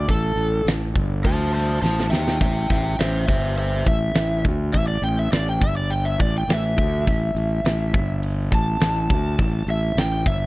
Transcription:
0.08 0.35 A1 medium
0.08 0.66 A4 loud
0.08 kick medium
0.08 open hi-hat medium
0.36 0.63 A1 medium
0.36 open hi-hat medium
0.65 0.92 A1 medium
0.65 snare loud
0.65 open hi-hat medium
0.96 1.23 G1 loud
0.96 kick loud
0.96 open hi-hat medium
1.25 1.79 D2 loud
1.25 1.53 C5 medium
1.25 1.54 A5 medium
1.25 kick loud
1.25 open hi-hat medium
1.54 1.81 C5 medium
1.54 1.82 A5 medium
1.54 open hi-hat medium
1.82 2.09 A1 loud
1.82 2.09 C5 medium
1.82 2.11 A5 medium
1.82 snare medium
2.00 snare medium
2.10 2.39 D#2 medium
2.10 2.38 E5 medium
2.10 2.40 G5 loud
2.10 snare medium
2.28 snare medium
2.41 2.68 A1 medium
2.41 2.68 E5 medium
2.41 2.70 G5 medium
2.41 kick loud
2.41 open hi-hat medium
2.70 2.97 A1 medium
2.70 2.98 E5 medium
2.70 3.00 G5 medium
2.70 kick loud
2.70 open hi-hat medium
2.99 3.26 A1 medium
2.99 3.26 C5 medium
2.99 3.27 E5 medium
2.99 snare loud
2.99 open hi-hat medium
3.28 3.82 G1 medium
3.28 3.55 C5 medium
3.28 3.57 E5 medium
3.28 kick loud
3.28 open hi-hat medium
3.57 3.85 C5 medium
3.57 3.86 E5 medium
3.57 open hi-hat medium
3.86 4.13 A1 medium
3.86 4.44 E5 loud
3.86 kick loud
3.86 open hi-hat medium
4.15 4.42 A1 medium
4.15 snare loud
4.15 open hi-hat medium
4.45 4.72 D2 medium
4.45 kick loud
4.45 open hi-hat medium
4.73 5.01 A1 medium
4.73 4.87 E5 loud
4.73 kick medium
4.73 open hi-hat medium
4.88 5.02 D5 medium
5.02 5.29 A1 medium
5.02 5.17 G5 medium
5.02 open hi-hat medium
5.19 5.32 E5 medium
5.32 5.59 A1 medium
5.32 5.46 D5 medium
5.32 snare loud
5.32 open hi-hat medium
5.49 5.62 G5 medium
5.61 6.16 G1 medium
5.61 5.77 E5 loud
5.61 kick loud
5.61 open hi-hat medium
5.77 5.91 D5 medium
5.90 6.05 G5 medium
5.90 open hi-hat medium
6.05 6.19 E5 medium
6.20 6.47 A1 medium
6.20 6.35 D5 medium
6.20 kick loud
6.20 open hi-hat medium
6.38 6.50 G5 medium
6.48 6.75 A1 medium
6.48 snare loud
6.48 open hi-hat medium
6.53 8.22 E5 loud
6.78 7.05 D2 loud
6.78 kick loud
6.78 open hi-hat medium
7.07 7.34 A1 medium
7.07 kick medium
7.07 open hi-hat medium
7.35 7.62 A1 medium
7.35 open hi-hat medium
7.64 7.92 A1 medium
7.64 snare loud
7.64 open hi-hat medium
7.94 8.48 G1 medium
7.94 kick loud
7.94 open hi-hat medium
8.23 open hi-hat medium
8.52 8.79 A1 loud
8.52 9.66 A5 loud
8.52 kick loud
8.52 open hi-hat medium
8.80 9.08 A1 medium
8.80 snare loud
8.80 open hi-hat medium
9.10 9.37 D2 loud
9.10 kick loud
9.10 open hi-hat medium
9.38 9.66 A1 medium
9.38 kick medium
9.38 open hi-hat medium
9.67 9.95 A1 medium
9.67 9.98 E5 medium
9.67 open hi-hat medium
9.95 10.24 A1 medium
9.95 10.27 G5 medium
9.95 snare loud
9.95 open hi-hat medium
10.26 10.46 G1 loud
10.26 10.46 E5 medium
10.26 kick loud
10.26 open hi-hat medium

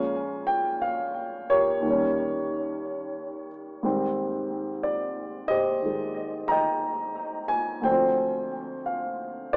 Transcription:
0.00 1.81 A#2 medium
0.00 1.83 F3 soft
0.00 1.83 G#3 soft
0.00 1.84 C#4 medium
0.00 1.45 C#5 medium
0.00 0.80 F5 medium
0.00 0.51 G#5 medium
0.47 0.79 G5 medium
0.82 1.50 F5 medium
1.50 3.48 G4 medium
1.50 3.48 A#4 medium
1.50 3.48 C#5 medium
1.80 3.83 D#2 medium
1.80 3.82 D#3 medium
1.87 3.83 G3 soft
1.87 3.89 C#4 medium
3.83 7.84 G#2 medium
3.83 5.81 D#3 soft
3.83 7.85 G3 medium
3.83 7.86 C4 medium
4.83 5.52 D5 medium
5.48 7.46 G4 medium
5.48 7.47 C5 medium
5.48 6.50 D#5 medium
5.82 7.84 D#3 soft
5.82 7.86 G#3 soft
6.48 7.82 D#5 medium
6.48 7.82 G5 medium
6.48 7.46 A#5 medium
7.48 7.82 G#5 medium
7.81 9.57 D2 soft
7.81 9.57 D3 soft
7.81 9.57 C5 medium
7.81 8.90 G5 medium
7.89 9.57 F3 soft
7.89 9.57 C4 medium
8.86 9.50 F5 medium
9.53 9.57 D5 medium

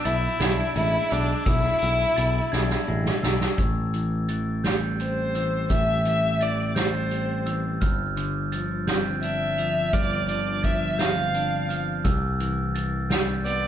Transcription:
0.00 1.11 B2 medium
0.00 0.41 B3 medium
0.04 0.27 B1 medium
0.04 0.76 E4 medium
0.04 1.82 E4 medium
0.04 0.40 A6 medium
0.04 closed hi-hat medium
0.40 0.61 B1 medium
0.40 1.10 D4 medium
0.40 1.11 G#6 medium
0.40 snare medium
0.40 closed hi-hat medium
0.76 0.97 A1 medium
0.76 2.53 G#3 medium
0.76 1.14 E4 medium
0.76 closed hi-hat soft
1.10 1.33 B1 medium
1.10 2.51 D4 soft
1.10 1.47 D4 medium
1.10 1.44 E6 medium
1.10 closed hi-hat medium
1.46 1.68 B1 medium
1.46 3.23 B2 medium
1.46 2.85 E4 medium
1.46 2.17 E6 medium
1.46 kick medium
1.46 closed hi-hat medium
1.82 2.04 B1 medium
1.82 closed hi-hat soft
2.16 2.39 B1 medium
2.16 3.58 E4 medium
2.16 2.52 A6 medium
2.16 closed hi-hat medium
2.52 2.74 B1 medium
2.52 3.23 D4 medium
2.52 3.23 G#6 medium
2.52 snare soft
2.70 snare soft
2.88 3.10 A1 medium
2.88 3.58 G#3 medium
3.05 snare medium
3.23 3.45 B1 medium
3.23 3.59 D4 medium
3.23 3.56 E6 medium
3.23 snare medium
3.41 snare medium
3.58 5.66 A1 medium
3.58 5.35 A2 medium
3.58 kick medium
3.58 closed hi-hat medium
3.94 4.29 E3 soft
3.94 closed hi-hat soft
4.29 5.34 E3 soft
4.29 4.64 A6 medium
4.29 closed hi-hat soft
4.64 6.76 G3 soft
4.64 5.35 G6 medium
4.64 snare medium
4.64 closed hi-hat medium
5.00 7.12 C4 soft
5.00 5.67 C5 medium
5.00 closed hi-hat soft
5.35 6.05 E3 soft
5.35 5.69 E6 soft
5.35 closed hi-hat soft
5.70 7.78 A1 medium
5.70 7.47 A2 medium
5.70 6.04 E5 medium
5.70 6.41 E6 medium
5.70 kick medium
5.70 closed hi-hat medium
6.05 6.41 E3 soft
6.05 6.44 E5 medium
6.05 closed hi-hat soft
6.40 7.46 E3 soft
6.40 6.77 D5 medium
6.40 6.76 A6 medium
6.40 closed hi-hat medium
6.75 8.56 G3 medium
6.75 7.53 C5 medium
6.75 7.46 G6 medium
6.75 snare medium
6.75 closed hi-hat medium
7.11 8.20 C4 medium
7.11 closed hi-hat soft
7.46 7.82 E3 soft
7.46 7.82 E6 medium
7.46 closed hi-hat soft
7.81 9.90 G1 medium
7.81 9.59 G2 medium
7.81 8.52 F6 medium
7.81 kick medium
7.81 closed hi-hat medium
8.17 9.93 D3 soft
8.17 closed hi-hat soft
8.52 9.58 F3 soft
8.52 8.88 A6 medium
8.52 closed hi-hat soft
8.87 11.00 C4 medium
8.87 9.58 G6 medium
8.87 snare medium
8.87 closed hi-hat medium
9.22 11.00 D4 medium
9.22 9.95 E5 medium
9.22 closed hi-hat soft
9.58 10.64 F3 soft
9.58 9.93 F7 medium
9.58 closed hi-hat soft
9.93 12.02 G1 medium
9.93 11.70 G2 medium
9.93 10.28 D5 medium
9.93 10.64 F6 medium
9.93 kick medium
9.93 closed hi-hat medium
10.28 12.05 D3 medium
10.28 10.67 D5 medium
10.28 closed hi-hat soft
10.63 11.69 F3 soft
10.63 11.01 E5 medium
10.63 10.99 A6 medium
10.63 kick medium
10.63 closed hi-hat soft
10.99 13.09 C4 soft
10.99 11.79 F5 medium
10.99 11.70 G6 medium
10.99 snare medium
10.99 closed hi-hat medium
11.34 12.06 D4 medium
11.34 closed hi-hat soft
11.69 12.05 F3 soft
11.69 12.05 F6 medium
11.69 closed hi-hat soft
12.04 13.68 C2 medium
12.04 13.68 C3 medium
12.04 12.75 E6 medium
12.04 kick medium
12.04 closed hi-hat medium
12.40 12.75 E3 medium
12.40 closed hi-hat soft
12.75 13.68 E3 soft
12.75 13.11 A6 medium
12.75 closed hi-hat medium
13.10 13.68 G3 soft
13.10 13.68 G6 medium
13.10 snare medium
13.10 closed hi-hat medium
13.46 13.68 B3 soft
13.46 13.68 D5 medium
13.46 closed hi-hat soft

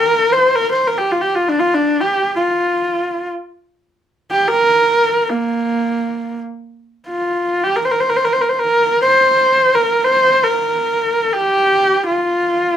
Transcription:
0.00 0.34 A#4 medium
0.32 0.57 C5 medium
0.55 0.71 A#4 medium
0.72 0.89 C5 medium
0.87 1.00 A#4 medium
0.98 1.13 G4 medium
1.11 1.23 F4 medium
1.21 1.37 G4 medium
1.35 1.50 F4 medium
1.48 1.61 D4 medium
1.60 1.76 F4 medium
1.74 2.02 D4 medium
2.00 2.34 G4 medium
2.36 3.28 F4 medium
4.31 4.49 G4 medium
4.48 5.31 A#4 medium
5.30 6.39 A#3 medium
7.08 7.65 F4 medium
7.64 7.78 G4 medium
7.76 7.87 A#4 medium
7.85 7.93 C5 medium
7.91 8.02 A#4 medium
8.00 8.11 C5 medium
8.10 8.18 A#4 medium
8.16 8.26 C5 medium
8.25 8.34 A#4 medium
8.33 8.43 C5 medium
8.41 8.50 A#4 medium
8.49 8.61 C5 medium
8.59 9.01 A#4 medium
9.02 9.76 C5 medium
9.75 10.06 A#4 medium
10.04 10.45 C5 medium
10.43 11.35 A#4 medium
11.33 12.07 G4 medium
12.08 12.77 F4 medium

